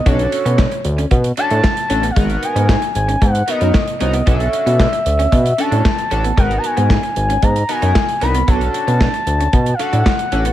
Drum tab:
HH |xxxx-xxxxxxx-xxx|xxxx-xxxxxxx-xxx|xxxx-xxxxxxx-xxx|xxxx-xxxxxxx-xxx|
CP |----x-------x---|----x-------x---|----x-------x---|----x-------x---|
SD |----o-------o---|----o-------o---|----o-------o---|----o-------o---|
BD |o---o---o---o---|o---o---o---o---|o---o---o---o---|o---o---o---o---|

HH |xxxx-xxxxxxx-xxx|
CP |----x-------x---|
SD |----o-------o---|
BD |o---o---o---o---|